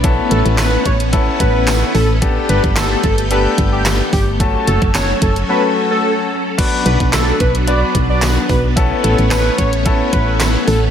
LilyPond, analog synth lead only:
\new Staff \with { instrumentName = "Analog synth lead" } { \time 4/4 \key b \minor \tempo 4 = 110 r8 a'16 r16 b'8 cis''16 r8. b'8 r8 a'16 r16 | r8 b'16 r16 a'8 a'16 r16 b'16 r8 g'16 r8 g'16 r16 | r8 a'16 r16 cis''8 a'16 r16 b'16 r8 a'8 r8. | r8 b'16 r16 a'8 b'16 r16 d''16 r8 d''16 r8 b'16 r16 |
r8 a'16 r16 b'8 cis''16 r8. b'8 r8 a'16 r16 | }